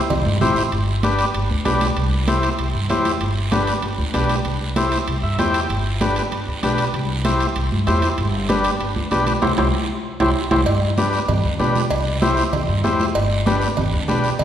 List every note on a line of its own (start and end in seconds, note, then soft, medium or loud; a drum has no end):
0.10 0.23 C2 medium
0.10 cowbell medium
0.10 high conga soft
0.10 low conga medium
0.10 long guiro medium
0.26 0.38 G2 loud
0.26 high conga medium
0.41 0.66 A1 medium
0.41 0.63 E4 medium
0.41 0.63 G4 medium
0.41 0.63 C5 medium
0.41 high conga medium
0.41 low conga medium
0.41 short guiro medium
0.56 short guiro medium
0.72 1.22 G1 loud
0.72 high conga soft
0.72 high timbale medium
0.72 long guiro medium
1.03 1.25 D4 medium
1.03 1.25 G4 medium
1.03 1.26 B4 medium
1.03 high conga medium
1.03 high timbale medium
1.03 short guiro medium
1.19 high timbale medium
1.19 short guiro medium
1.34 1.47 G1 medium
1.34 high conga soft
1.34 high timbale medium
1.34 long guiro medium
1.50 1.63 D2 medium
1.50 high conga medium
1.65 1.90 B1 medium
1.65 1.87 D4 medium
1.65 1.87 G4 medium
1.65 1.87 B4 medium
1.65 high conga medium
1.65 high timbale medium
1.65 low timbale medium
1.65 short guiro medium
1.81 high conga medium
1.81 high timbale medium
1.81 short guiro medium
1.96 2.46 C2 loud
1.96 high timbale medium
1.96 long guiro medium
2.27 2.49 E4 medium
2.27 2.50 G4 medium
2.27 2.50 C5 medium
2.27 high conga medium
2.27 high timbale medium
2.27 short guiro medium
2.43 high timbale medium
2.43 short guiro medium
2.59 2.71 C2 medium
2.59 high conga soft
2.59 high timbale medium
2.59 long guiro medium
2.75 2.87 G2 medium
2.89 3.14 E2 medium
2.89 3.12 E4 medium
2.89 3.12 G4 medium
2.89 3.12 C5 medium
2.89 high conga medium
2.89 high timbale medium
2.89 low timbale medium
2.89 short guiro medium
3.05 high conga medium
3.05 high timbale medium
3.05 short guiro medium
3.21 3.70 G1 medium
3.21 high conga soft
3.21 high timbale medium
3.21 long guiro medium
3.51 3.74 D4 medium
3.51 3.74 G4 medium
3.51 3.74 B4 medium
3.51 high conga medium
3.51 high timbale medium
3.51 short guiro medium
3.67 high timbale medium
3.67 short guiro medium
3.82 3.95 G1 medium
3.82 high conga soft
3.82 high timbale medium
3.82 long guiro medium
3.98 4.11 D2 medium
3.98 high conga medium
4.14 4.39 B1 medium
4.14 4.36 D4 medium
4.14 4.36 G4 medium
4.14 4.36 B4 medium
4.14 high conga medium
4.14 high timbale medium
4.14 low timbale medium
4.14 short guiro medium
4.29 high conga medium
4.29 high timbale medium
4.29 short guiro medium
4.45 4.95 C2 loud
4.45 high conga soft
4.45 high timbale medium
4.45 long guiro medium
4.76 4.98 E4 medium
4.76 4.98 G4 medium
4.76 4.99 C5 medium
4.76 high conga medium
4.76 high timbale medium
4.76 short guiro medium
4.92 high timbale medium
4.92 short guiro medium
5.07 5.20 C2 medium
5.07 high conga soft
5.07 high timbale medium
5.07 long guiro medium
5.23 5.36 G2 loud
5.23 5.38 E5 medium
5.38 5.63 E2 medium
5.38 5.60 E4 medium
5.38 5.61 G4 medium
5.38 5.61 C5 medium
5.38 5.68 G5 medium
5.38 high conga medium
5.38 high timbale medium
5.38 low timbale medium
5.38 short guiro medium
5.54 high timbale medium
5.54 short guiro medium
5.70 6.19 G1 medium
5.70 high conga soft
5.70 high timbale medium
5.70 long guiro medium
6.01 6.22 D4 medium
6.01 6.23 G4 medium
6.01 6.23 B4 medium
6.01 high conga medium
6.01 high timbale medium
6.01 short guiro medium
6.16 high timbale medium
6.16 short guiro medium
6.32 6.44 G1 medium
6.32 high conga soft
6.32 high timbale medium
6.32 long guiro medium
6.47 6.60 D2 medium
6.63 6.88 B1 medium
6.63 6.85 D4 medium
6.63 6.85 G4 medium
6.63 6.85 B4 medium
6.63 high conga medium
6.63 high timbale medium
6.63 low timbale medium
6.63 short guiro medium
6.78 high timbale medium
6.78 short guiro medium
6.94 7.44 C2 loud
6.94 high conga soft
6.94 high timbale medium
6.94 long guiro medium
7.25 7.47 E4 medium
7.25 7.47 G4 medium
7.25 7.47 C5 medium
7.25 high conga medium
7.25 high timbale medium
7.25 short guiro medium
7.40 high timbale medium
7.40 short guiro medium
7.55 7.69 C2 medium
7.55 high conga soft
7.55 high timbale medium
7.55 long guiro medium
7.72 7.84 G2 medium
7.72 high conga medium
7.87 8.12 E2 loud
7.87 8.09 E4 medium
7.87 8.09 G4 medium
7.87 8.09 C5 medium
7.87 high conga medium
7.87 high timbale medium
7.87 low timbale medium
7.87 short guiro medium
8.02 high conga medium
8.02 high timbale medium
8.02 short guiro medium
8.18 8.68 G1 loud
8.18 high conga soft
8.18 high timbale medium
8.18 long guiro medium
8.49 8.71 D4 medium
8.49 8.71 G4 medium
8.49 8.71 B4 medium
8.49 high conga medium
8.49 high timbale medium
8.49 short guiro medium
8.64 high timbale medium
8.64 short guiro medium
8.80 8.93 G1 medium
8.80 high conga soft
8.80 high timbale medium
8.80 long guiro medium
8.96 9.08 D2 medium
8.96 high conga medium
9.11 9.36 B1 medium
9.11 9.33 D4 medium
9.11 9.33 G4 medium
9.11 9.33 B4 medium
9.11 high conga medium
9.11 high timbale medium
9.11 low timbale medium
9.11 short guiro medium
9.26 high conga medium
9.26 high timbale medium
9.26 short guiro medium
9.42 9.54 C2 medium
9.42 9.52 E4 medium
9.42 9.52 G4 medium
9.42 9.52 C5 medium
9.42 high conga medium
9.42 high timbale medium
9.42 long guiro loud
9.57 9.69 C2 medium
9.57 9.68 E4 medium
9.57 9.68 G4 medium
9.57 9.68 C5 medium
9.57 high conga medium
9.57 high timbale medium
9.57 long guiro medium
10.20 10.32 C2 medium
10.20 10.30 E4 medium
10.20 10.30 G4 medium
10.20 10.30 C5 medium
10.20 high conga medium
10.20 high timbale loud
10.20 long guiro medium
10.51 10.63 C2 medium
10.51 10.61 E4 medium
10.51 10.61 G4 medium
10.51 10.61 C5 medium
10.51 high conga medium
10.51 high timbale medium
10.51 long guiro medium
10.66 11.16 G2 medium
10.66 cowbell loud
10.66 high conga soft
10.66 long guiro medium
10.98 11.20 D4 medium
10.98 11.20 G4 medium
10.98 11.20 B4 medium
10.98 high conga medium
10.98 short guiro medium
11.13 short guiro medium
11.28 11.41 G2 loud
11.28 cowbell medium
11.28 high conga soft
11.28 low conga medium
11.28 long guiro medium
11.44 11.57 D2 medium
11.59 11.85 B2 medium
11.59 11.81 D4 medium
11.59 11.82 G4 medium
11.59 11.82 B4 medium
11.59 high conga medium
11.59 low timbale medium
11.59 short guiro medium
11.75 high conga medium
11.75 short guiro medium
11.90 12.40 C2 loud
11.90 cowbell loud
11.90 high conga soft
11.90 long guiro medium
12.22 12.44 E4 medium
12.22 12.44 G4 medium
12.22 12.44 C5 medium
12.22 high conga loud
12.22 short guiro medium
12.37 short guiro medium
12.53 12.65 C2 medium
12.53 cowbell medium
12.53 high conga soft
12.53 low conga medium
12.53 long guiro medium
12.69 12.81 G2 medium
12.84 13.09 E2 medium
12.84 13.06 E4 medium
12.84 13.06 G4 medium
12.84 13.06 C5 medium
12.84 high conga medium
12.84 low timbale medium
12.84 short guiro medium
13.00 high conga medium
13.00 short guiro medium
13.15 13.65 G1 loud
13.15 cowbell loud
13.15 high conga soft
13.15 long guiro medium
13.46 13.68 D4 medium
13.46 13.68 G4 medium
13.46 13.68 B4 medium
13.46 high conga medium
13.46 short guiro medium
13.62 short guiro medium
13.77 13.90 G1 medium
13.77 cowbell medium
13.77 high conga soft
13.77 low conga medium
13.77 long guiro medium
13.93 14.05 D2 loud
14.08 14.33 B1 medium
14.08 14.30 D4 medium
14.08 14.30 G4 medium
14.08 14.30 B4 medium
14.08 high conga medium
14.08 low timbale medium
14.08 short guiro medium
14.24 short guiro medium
14.39 14.44 C2 medium
14.39 cowbell medium
14.39 high conga soft
14.39 low conga medium
14.39 long guiro medium